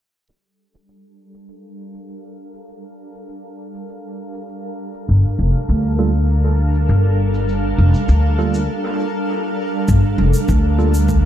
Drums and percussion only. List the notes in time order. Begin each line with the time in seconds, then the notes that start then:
0.29 shaker
0.74 shaker
0.89 shaker
1.34 shaker
1.49 shaker
1.94 shaker
2.09 shaker
2.54 shaker
2.69 shaker
3.14 shaker
3.29 shaker
3.74 shaker
3.89 shaker
4.34 shaker
4.48 shaker
4.94 shaker
5.08 shaker
5.54 shaker
5.68 shaker
6.14 shaker
6.28 shaker
6.74 shaker
6.89 shaker
7.34 shaker
7.49 shaker
7.94 shaker
8.09 shaker
8.54 shaker
9.88 kick, shaker
10.34 shaker
10.49 kick, shaker
10.94 shaker
11.09 kick, shaker